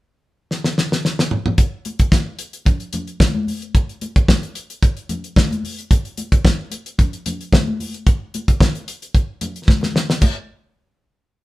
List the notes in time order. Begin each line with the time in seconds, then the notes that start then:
0.51 snare
0.64 snare
0.78 snare
0.92 snare
1.05 snare
1.19 snare
1.31 mid tom
1.46 mid tom
1.58 kick, closed hi-hat
1.85 closed hi-hat, muted conga
1.99 kick, closed hi-hat
2.12 kick, snare, high conga
2.39 closed hi-hat
2.53 closed hi-hat
2.65 kick, closed hi-hat, low conga
2.80 closed hi-hat
2.93 closed hi-hat, muted conga, low conga
3.07 closed hi-hat
3.20 kick, snare, high conga
3.35 high conga
3.47 open hi-hat, high conga
3.62 closed hi-hat
3.75 kick, closed hi-hat
3.89 closed hi-hat
4.01 closed hi-hat, muted conga
4.16 kick, closed hi-hat
4.28 kick, snare, high conga
4.43 closed hi-hat
4.55 closed hi-hat
4.70 closed hi-hat
4.83 kick, closed hi-hat
4.97 closed hi-hat
5.09 closed hi-hat, muted conga, low conga
5.24 closed hi-hat
5.36 kick, snare, high conga
5.51 closed hi-hat, high conga
5.63 open hi-hat, high conga
5.78 closed hi-hat
5.91 kick, closed hi-hat
6.05 closed hi-hat
6.17 closed hi-hat, muted conga
6.32 kick, closed hi-hat
6.45 kick, snare, high conga
6.71 closed hi-hat, muted conga
6.86 closed hi-hat
6.98 kick, closed hi-hat, low conga
7.13 closed hi-hat
7.26 closed hi-hat, muted conga, low conga
7.41 closed hi-hat
7.53 kick, snare, high conga
7.67 high conga
7.80 open hi-hat, high conga
7.94 closed hi-hat
8.06 kick, closed hi-hat
8.34 closed hi-hat, muted conga
8.48 kick, closed hi-hat
8.61 kick, snare, high conga
8.75 closed hi-hat
8.88 closed hi-hat
9.02 closed hi-hat
9.15 kick, closed hi-hat
9.41 closed hi-hat, muted conga, low conga
9.56 closed hi-hat
9.68 kick, snare, high conga
9.81 snare, high conga
9.94 snare, high conga
10.10 snare
10.21 kick, crash, muted conga